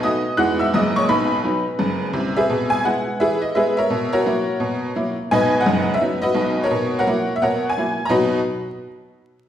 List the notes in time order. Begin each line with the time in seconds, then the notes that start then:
0.03 A3 B3 F#4 D#5 D#6
0.37 E2 E3 G#3 B3 D#4 F#5 F#6
0.59 E5 E6
0.74 F#1 F#2 G#3 A#3 E4 D#5 D#6
0.96 C#5 C#6
1.09 B1 B2 B4 B5
1.44 F#3 B3 D#4
1.79 F#1 F#2
2.13 C2 C3
2.36 G#4 B4 E5
2.50 B2
2.70 G#5
2.85 G#3 B3 E4 F#5
3.20 E3 G#4 B4 E5
3.42 D#5
3.55 G#3 B3 E4 G#4 B4 E5
3.77 A#4 C#5 E5
3.90 B2
4.13 F#4 A#4 C#5
4.26 F#3 A#3 E4
4.60 B2
4.96 F#3 A#3 E4
5.31 B1 B2 B4 D#5 G#5
5.61 B4 D#5 F#5
5.66 F#1 F#2
5.94 E5
6.01 F#3 B3 D#4
6.22 F#4 B4 D#5
6.34 B1 B2
6.64 F#4 A#4 C#5
6.71 B2
6.99 A#4 C#5 F#5
7.07 F#3 A#3 E4
7.36 E5
7.42 B2 A#4 C#5 F#5
7.69 G#5
7.77 F#3 A#3 E4
8.05 B2 A#5
8.10 F#3 D#4 F#4 B4 D#5 B5